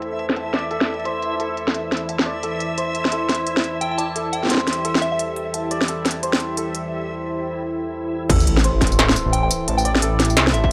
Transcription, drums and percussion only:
0.02 closed hi-hat
0.19 closed hi-hat
0.29 snare
0.36 closed hi-hat
0.54 snare, closed hi-hat
0.59 closed hi-hat
0.71 closed hi-hat
0.81 snare
0.88 closed hi-hat
0.94 closed hi-hat
1.00 closed hi-hat
1.05 closed hi-hat
1.22 closed hi-hat
1.40 closed hi-hat
1.57 closed hi-hat
1.68 snare
1.74 closed hi-hat
1.92 snare, closed hi-hat
1.97 closed hi-hat
2.09 closed hi-hat
2.19 snare
2.43 closed hi-hat
2.60 closed hi-hat
2.78 closed hi-hat
2.95 closed hi-hat
3.05 snare
3.12 closed hi-hat
3.29 snare, closed hi-hat
3.35 closed hi-hat
3.47 closed hi-hat
3.57 snare
3.64 closed hi-hat
3.81 closed hi-hat
3.98 closed hi-hat
4.16 closed hi-hat
4.33 closed hi-hat
4.43 snare
4.45 snare
4.47 snare
4.49 snare, closed hi-hat
4.51 snare
4.54 snare
4.57 snare
4.67 snare, closed hi-hat
4.73 closed hi-hat
4.85 closed hi-hat
4.95 snare
5.02 closed hi-hat
5.19 closed hi-hat
5.36 closed hi-hat
5.54 closed hi-hat
5.71 closed hi-hat
5.81 snare
5.88 closed hi-hat
6.05 snare, closed hi-hat
6.11 closed hi-hat
6.23 closed hi-hat
6.33 snare
6.40 closed hi-hat
6.57 closed hi-hat
6.75 closed hi-hat
8.30 kick, closed hi-hat, crash
8.40 tambourine
8.47 closed hi-hat
8.57 snare
8.64 closed hi-hat
8.81 kick, snare, closed hi-hat
8.87 closed hi-hat
8.92 tambourine
8.99 snare, closed hi-hat
9.09 snare
9.16 closed hi-hat, tambourine
9.33 closed hi-hat
9.51 closed hi-hat, tambourine
9.68 closed hi-hat
9.78 tambourine
9.85 closed hi-hat
9.95 snare
10.02 closed hi-hat
10.20 snare, closed hi-hat
10.25 closed hi-hat
10.30 tambourine
10.37 snare, closed hi-hat
10.47 snare
10.54 closed hi-hat
10.64 kick

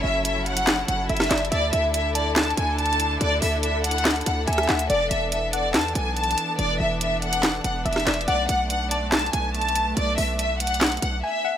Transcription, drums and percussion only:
0.25 closed hi-hat
0.46 closed hi-hat
0.57 closed hi-hat
0.67 snare, clap, closed hi-hat
0.88 closed hi-hat
1.09 closed hi-hat
1.17 cross-stick, snare, closed hi-hat
1.24 closed hi-hat
1.31 snare, clap, closed hi-hat
1.38 closed hi-hat
1.45 closed hi-hat
1.52 closed hi-hat
1.73 closed hi-hat
1.94 closed hi-hat
2.15 closed hi-hat
2.36 snare, clap, closed hi-hat
2.43 closed hi-hat
2.50 closed hi-hat
2.57 closed hi-hat
2.79 closed hi-hat
2.86 closed hi-hat
2.93 closed hi-hat
3.00 closed hi-hat
3.21 closed hi-hat
3.42 open hi-hat
3.63 closed hi-hat
3.84 closed hi-hat
3.91 closed hi-hat
3.98 closed hi-hat
4.05 snare, clap, closed hi-hat
4.11 closed hi-hat
4.16 closed hi-hat
4.21 closed hi-hat
4.26 closed hi-hat
4.48 closed hi-hat
4.53 closed hi-hat
4.58 cross-stick, closed hi-hat
4.63 closed hi-hat
4.69 snare, clap, closed hi-hat
4.79 closed hi-hat
4.90 closed hi-hat
5.11 closed hi-hat
5.32 closed hi-hat
5.53 closed hi-hat
5.74 snare, clap, closed hi-hat
5.81 closed hi-hat
5.88 closed hi-hat
5.95 closed hi-hat
6.17 closed hi-hat
6.24 closed hi-hat
6.31 closed hi-hat
6.38 closed hi-hat
6.59 closed hi-hat
7.01 closed hi-hat
7.22 closed hi-hat
7.33 closed hi-hat
7.43 snare, clap, closed hi-hat
7.64 closed hi-hat
7.86 closed hi-hat
7.93 cross-stick, snare, closed hi-hat
8.00 closed hi-hat
8.07 snare, clap, closed hi-hat
8.14 closed hi-hat
8.21 closed hi-hat
8.28 closed hi-hat
8.49 closed hi-hat
8.70 closed hi-hat
8.91 closed hi-hat
9.12 snare, clap, closed hi-hat
9.19 closed hi-hat
9.26 closed hi-hat
9.33 closed hi-hat
9.54 closed hi-hat
9.62 closed hi-hat
9.69 closed hi-hat
9.76 closed hi-hat
9.97 closed hi-hat
10.18 open hi-hat
10.39 closed hi-hat
10.60 closed hi-hat
10.67 closed hi-hat
10.74 closed hi-hat
10.81 snare, clap, closed hi-hat
10.87 closed hi-hat
10.92 closed hi-hat
10.97 closed hi-hat
11.02 closed hi-hat

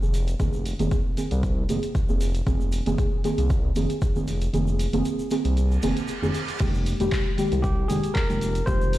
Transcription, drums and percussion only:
0.03 shaker
0.14 open hi-hat, shaker
0.28 closed hi-hat, shaker
0.40 kick, closed hi-hat, shaker
0.53 shaker
0.66 open hi-hat, shaker
0.79 closed hi-hat, shaker
0.91 kick, closed hi-hat, shaker
1.17 open hi-hat, shaker
1.31 closed hi-hat, shaker
1.43 kick, closed hi-hat, shaker
1.69 open hi-hat, shaker
1.83 closed hi-hat, shaker
1.95 kick, closed hi-hat, shaker
2.09 shaker
2.21 open hi-hat, shaker
2.34 closed hi-hat, shaker
2.47 kick, closed hi-hat, shaker
2.61 shaker
2.72 open hi-hat, shaker
2.86 closed hi-hat, shaker
2.98 kick, closed hi-hat, shaker
3.24 open hi-hat, shaker
3.38 closed hi-hat, shaker
3.50 kick, closed hi-hat, shaker
3.76 open hi-hat, shaker
3.90 closed hi-hat, shaker
4.02 kick, closed hi-hat, shaker
4.16 shaker
4.28 open hi-hat, shaker
4.41 closed hi-hat, shaker
4.54 closed hi-hat, shaker
4.67 shaker
4.79 open hi-hat, shaker
4.93 closed hi-hat, shaker
5.05 closed hi-hat, shaker
5.19 shaker
5.31 open hi-hat, shaker
5.45 closed hi-hat, shaker
5.57 closed hi-hat, shaker
5.71 shaker
5.83 open hi-hat, shaker
5.97 closed hi-hat, shaker
6.08 closed hi-hat, shaker
6.23 shaker
6.34 open hi-hat, shaker
6.48 closed hi-hat, shaker
6.60 kick, closed hi-hat, crash, shaker
6.74 shaker
6.86 open hi-hat, shaker
7.00 closed hi-hat, shaker
7.12 kick, clap, closed hi-hat, shaker
7.38 open hi-hat, shaker
7.52 closed hi-hat, shaker
7.64 kick, closed hi-hat, shaker
7.90 open hi-hat, shaker
8.03 closed hi-hat, shaker
8.16 kick, clap, closed hi-hat, shaker
8.30 shaker
8.41 open hi-hat, shaker
8.55 closed hi-hat, shaker
8.67 kick, closed hi-hat, shaker
8.81 shaker
8.93 open hi-hat, shaker

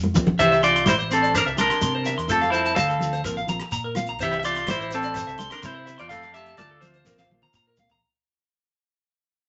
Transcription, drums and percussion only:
0.03 high conga
0.15 floor tom, low conga, shekere
0.27 kick, low conga
0.39 kick, closed hi-hat, muted conga, shekere
0.52 cross-stick
0.63 closed hi-hat, shekere
0.75 closed hi-hat, shekere
0.86 kick, cross-stick, closed hi-hat, muted conga, high conga, shekere
0.99 shekere
1.11 closed hi-hat, shekere
1.23 closed hi-hat, shekere
1.34 kick, cross-stick, closed hi-hat, muted conga, shekere
1.47 shekere
1.58 closed hi-hat, muted conga, high conga, shekere
1.70 cross-stick, closed hi-hat
1.81 kick, closed hi-hat, high conga, shekere
2.05 cross-stick, closed hi-hat, shekere
2.19 closed hi-hat
2.29 kick, closed hi-hat, muted conga, shekere
2.42 cross-stick
2.53 closed hi-hat, shekere
2.65 closed hi-hat, shekere
2.76 kick, cross-stick, closed hi-hat, muted conga, high conga, shekere
3.00 closed hi-hat, low conga, shekere
3.13 closed hi-hat, shekere
3.24 kick, cross-stick, closed hi-hat, muted conga, shekere
3.37 shekere
3.48 closed hi-hat, low conga, shekere
3.60 cross-stick, closed hi-hat
3.71 kick, closed hi-hat, shekere
3.95 cross-stick, closed hi-hat, high conga, shekere
4.07 closed hi-hat
4.19 kick, closed hi-hat, muted conga, shekere
4.31 cross-stick
4.43 closed hi-hat, shekere
4.55 closed hi-hat, shekere
4.67 kick, cross-stick, closed hi-hat, muted conga, high conga, shekere
4.81 shekere
4.91 closed hi-hat, shekere
5.03 closed hi-hat, shekere
5.14 kick, cross-stick, closed hi-hat, muted conga, shekere
5.29 shekere
5.38 closed hi-hat, muted conga, high conga, shekere
5.51 cross-stick, closed hi-hat
5.63 kick, closed hi-hat, high conga, shekere
5.87 cross-stick, closed hi-hat, shekere
5.99 closed hi-hat
6.09 kick, closed hi-hat, muted conga, shekere
6.22 cross-stick, shekere
6.34 closed hi-hat, shekere
6.46 closed hi-hat
6.57 kick, cross-stick, closed hi-hat, muted conga, high conga, shekere
6.82 closed hi-hat, low conga, shekere
6.94 closed hi-hat
7.05 kick, snare, muted conga, shekere
7.17 snare, shekere
7.31 muted conga, low conga
7.42 high tom
7.53 kick, mid tom, shekere
7.77 floor tom, high conga, shekere
7.89 floor tom, shekere

